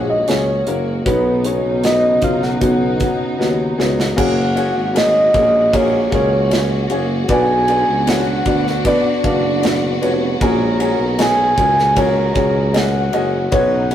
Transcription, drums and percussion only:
0.28 snare, closed hi-hat
0.67 closed hi-hat
1.06 kick, closed hi-hat
1.44 closed hi-hat
1.84 snare, closed hi-hat
2.22 kick, closed hi-hat
2.43 snare
2.61 kick, closed hi-hat
3.00 kick, closed hi-hat
3.41 snare
3.80 snare
4.00 snare
4.18 kick, crash
4.57 ride
4.96 snare, ride
5.34 kick, ride
5.73 kick, ride
6.12 kick, ride
6.51 snare, ride
6.90 ride
7.29 kick, ride
7.68 ride
8.07 snare, ride
8.46 kick, ride
8.67 snare
8.85 kick, ride
9.24 kick, ride
9.63 snare, ride
10.03 ride
10.41 kick, ride
10.80 ride
11.19 snare, ride
11.58 kick, ride
11.79 snare
11.96 kick, ride
12.35 kick, ride
12.74 snare, ride
13.13 ride
13.52 kick, ride
13.91 ride

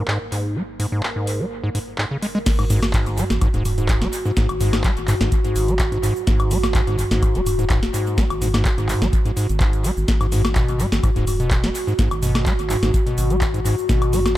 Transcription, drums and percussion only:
0.08 clap
0.32 open hi-hat
0.80 open hi-hat
1.03 clap
1.27 open hi-hat
1.75 open hi-hat
1.98 clap
2.22 open hi-hat
2.46 kick, snare, closed hi-hat, crash, shaker
2.59 closed hi-hat, high woodblock, shaker
2.70 mid tom, open hi-hat, shaker
2.83 snare, closed hi-hat, high woodblock, shaker
2.93 kick, clap, closed hi-hat, shaker
3.06 closed hi-hat, shaker
3.18 mid tom, open hi-hat, shaker
3.30 snare, closed hi-hat, shaker
3.41 kick, closed hi-hat, high woodblock, shaker
3.54 closed hi-hat, shaker
3.65 mid tom, open hi-hat, shaker
3.78 closed hi-hat, shaker
3.89 kick, clap, closed hi-hat, shaker
4.02 snare, closed hi-hat, shaker
4.13 open hi-hat, shaker
4.25 shaker
4.37 kick, snare, closed hi-hat, shaker
4.49 closed hi-hat, high woodblock, shaker
4.61 mid tom, open hi-hat, shaker
4.73 snare, closed hi-hat, high woodblock, shaker
4.84 kick, clap, closed hi-hat, shaker
4.97 closed hi-hat, shaker
5.08 clap, mid tom, open hi-hat, shaker
5.21 snare, closed hi-hat, shaker
5.32 kick, closed hi-hat, shaker
5.44 closed hi-hat, shaker
5.56 open hi-hat, shaker
5.68 closed hi-hat, shaker
5.79 kick, clap, closed hi-hat, shaker
5.92 closed hi-hat, shaker
6.03 open hi-hat, shaker
6.16 shaker
6.27 kick, snare, closed hi-hat, shaker
6.40 closed hi-hat, high woodblock, shaker
6.51 mid tom, open hi-hat, shaker
6.63 snare, closed hi-hat, high woodblock, shaker
6.74 kick, clap, closed hi-hat, shaker
6.87 closed hi-hat, shaker
6.99 mid tom, open hi-hat, shaker
7.11 snare, closed hi-hat, shaker
7.22 kick, closed hi-hat, high woodblock, shaker
7.35 closed hi-hat, shaker
7.46 mid tom, open hi-hat, shaker
7.59 closed hi-hat, shaker
7.70 kick, clap, closed hi-hat, shaker
7.83 snare, closed hi-hat, shaker
7.94 open hi-hat, shaker
8.07 shaker
8.18 kick, snare, closed hi-hat, shaker
8.30 closed hi-hat, high woodblock, shaker
8.42 mid tom, open hi-hat, shaker
8.54 snare, closed hi-hat, high woodblock, shaker
8.65 kick, clap, closed hi-hat, shaker
8.78 closed hi-hat, shaker
8.89 clap, mid tom, open hi-hat, shaker
9.02 snare, closed hi-hat, shaker
9.13 kick, closed hi-hat, shaker
9.26 closed hi-hat, shaker
9.37 open hi-hat, shaker
9.49 closed hi-hat, shaker
9.60 kick, clap, closed hi-hat, shaker
9.73 closed hi-hat, shaker
9.84 open hi-hat, shaker
9.97 shaker
10.08 kick, snare, closed hi-hat, shaker
10.21 closed hi-hat, high woodblock, shaker
10.32 mid tom, open hi-hat, shaker
10.45 snare, closed hi-hat, high woodblock, shaker
10.55 kick, clap, closed hi-hat, shaker
10.68 closed hi-hat, shaker
10.80 mid tom, open hi-hat, shaker
10.92 snare, closed hi-hat, shaker
11.03 kick, closed hi-hat, high woodblock, shaker
11.16 closed hi-hat, shaker
11.27 mid tom, open hi-hat, shaker
11.40 closed hi-hat, shaker
11.51 kick, clap, closed hi-hat, shaker
11.64 snare, closed hi-hat, shaker
11.75 open hi-hat, shaker
11.88 shaker
11.99 kick, snare, closed hi-hat, shaker
12.11 closed hi-hat, high woodblock, shaker
12.23 mid tom, open hi-hat, shaker
12.35 snare, closed hi-hat, high woodblock, shaker
12.46 kick, clap, closed hi-hat, shaker
12.59 closed hi-hat, shaker
12.70 clap, mid tom, open hi-hat, shaker
12.83 snare, closed hi-hat, shaker
12.94 kick, closed hi-hat, shaker
13.07 closed hi-hat, shaker
13.18 open hi-hat, shaker
13.30 closed hi-hat, shaker
13.41 kick, clap, closed hi-hat, shaker
13.54 closed hi-hat, shaker
13.66 open hi-hat, shaker
13.78 shaker
13.89 kick, snare, closed hi-hat, shaker
14.02 closed hi-hat, high woodblock, shaker
14.13 mid tom, open hi-hat, shaker
14.26 snare, closed hi-hat, high woodblock, shaker

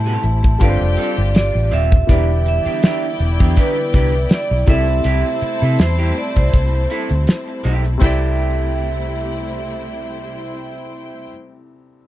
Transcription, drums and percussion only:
0.07 closed hi-hat
0.23 closed hi-hat
0.44 kick, closed hi-hat
0.61 kick, closed hi-hat
0.80 closed hi-hat
0.97 closed hi-hat
1.17 closed hi-hat
1.35 snare, closed hi-hat
1.71 closed hi-hat
1.92 kick, closed hi-hat
2.09 kick, closed hi-hat
2.46 closed hi-hat
2.65 closed hi-hat
2.83 snare, closed hi-hat
3.19 closed hi-hat
3.40 kick, closed hi-hat
3.57 kick, closed hi-hat
3.77 closed hi-hat
3.93 kick, snare, closed hi-hat
4.12 closed hi-hat
4.29 snare, closed hi-hat
4.66 kick, closed hi-hat
4.88 closed hi-hat
5.04 closed hi-hat
5.41 closed hi-hat
5.61 closed hi-hat
5.79 snare, closed hi-hat
6.16 closed hi-hat
6.36 kick, closed hi-hat
6.53 kick, closed hi-hat
6.90 closed hi-hat
7.09 closed hi-hat
7.27 snare, closed hi-hat
7.48 closed hi-hat
7.64 closed hi-hat
7.85 closed hi-hat
8.02 kick, ride bell

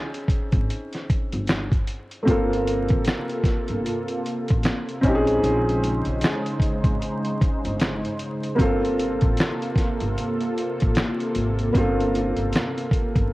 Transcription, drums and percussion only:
0.14 closed hi-hat
0.28 kick, closed hi-hat
0.52 kick, closed hi-hat
0.70 closed hi-hat
0.93 snare, closed hi-hat
1.10 kick, closed hi-hat
1.32 closed hi-hat
1.47 finger snap, snare, closed hi-hat
1.72 kick, closed hi-hat
1.87 closed hi-hat
2.11 closed hi-hat
2.27 kick, closed hi-hat
2.53 closed hi-hat
2.67 closed hi-hat
2.88 kick, closed hi-hat
3.05 snare, closed hi-hat
3.09 finger snap
3.29 closed hi-hat
3.44 kick, snare, closed hi-hat
3.68 closed hi-hat
3.86 closed hi-hat
4.08 closed hi-hat
4.26 closed hi-hat
4.48 kick, closed hi-hat
4.63 finger snap, snare, closed hi-hat
4.89 closed hi-hat
5.03 kick, closed hi-hat
5.27 closed hi-hat
5.44 closed hi-hat
5.69 closed hi-hat
5.84 closed hi-hat
6.05 closed hi-hat
6.21 snare, closed hi-hat
6.25 finger snap
6.46 closed hi-hat
6.60 kick, closed hi-hat
6.84 kick, closed hi-hat
7.02 closed hi-hat
7.25 closed hi-hat
7.41 kick, closed hi-hat
7.65 closed hi-hat
7.79 finger snap, snare, closed hi-hat
8.05 closed hi-hat
8.19 closed hi-hat
8.43 closed hi-hat
8.59 kick, closed hi-hat
8.85 closed hi-hat
8.99 closed hi-hat
9.21 kick, closed hi-hat
9.37 snare, closed hi-hat
9.41 finger snap
9.62 closed hi-hat
9.76 kick, snare, closed hi-hat
10.00 closed hi-hat
10.18 closed hi-hat
10.41 closed hi-hat
10.58 closed hi-hat
10.80 kick, closed hi-hat
10.95 finger snap, snare, closed hi-hat
11.20 closed hi-hat
11.35 closed hi-hat
11.59 closed hi-hat
11.75 kick, closed hi-hat
12.00 closed hi-hat
12.15 closed hi-hat
12.37 closed hi-hat
12.53 snare, closed hi-hat
12.57 finger snap
12.78 closed hi-hat
12.91 kick, closed hi-hat
13.16 kick, closed hi-hat

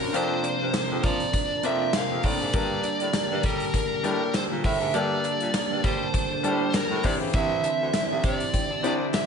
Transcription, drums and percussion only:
0.14 closed hi-hat
0.44 clap, closed hi-hat
0.74 snare, clap, closed hi-hat, tambourine
1.03 kick, closed hi-hat
1.20 closed hi-hat
1.33 kick, closed hi-hat
1.63 closed hi-hat
1.93 snare, clap, closed hi-hat, tambourine
2.23 kick, open hi-hat
2.53 kick, closed hi-hat
2.84 clap, closed hi-hat
3.00 closed hi-hat
3.13 snare, clap, closed hi-hat, tambourine
3.43 kick, closed hi-hat
3.60 closed hi-hat
3.74 kick, closed hi-hat
4.04 closed hi-hat
4.34 snare, clap, closed hi-hat, tambourine
4.64 kick, open hi-hat
4.94 closed hi-hat
5.25 clap, closed hi-hat
5.41 closed hi-hat
5.54 snare, clap, closed hi-hat, tambourine
5.84 kick, closed hi-hat
6.14 kick, closed hi-hat
6.44 closed hi-hat
6.74 snare, clap, closed hi-hat, tambourine
7.03 kick, open hi-hat
7.33 kick, closed hi-hat
7.64 clap, closed hi-hat
7.94 snare, clap, closed hi-hat, tambourine
8.23 kick, closed hi-hat
8.40 closed hi-hat
8.54 kick, closed hi-hat
8.84 closed hi-hat
9.14 snare, clap, closed hi-hat, tambourine

